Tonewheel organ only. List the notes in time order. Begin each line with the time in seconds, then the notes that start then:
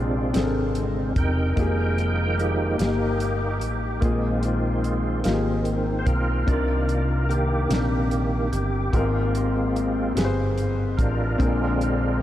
Already playing: C3 G#3 C4 D4 F4
0.76 D3 G#3 C4
1.17 D#4 A#4 G5
1.57 D#3 F3 G#3 A#3
2.38 A#3 D#4 G4
3.60 G4
4.00 D#3 G#3 C4 F4
5.99 C5
6.06 F4 A#4
6.47 D#3 A#3 D5
7.29 D#3 A#3 G4
8.52 G4
8.93 G#3 A#3 C4 F4
10.97 D4 F4 A#4
11.39 D3 G#3 C4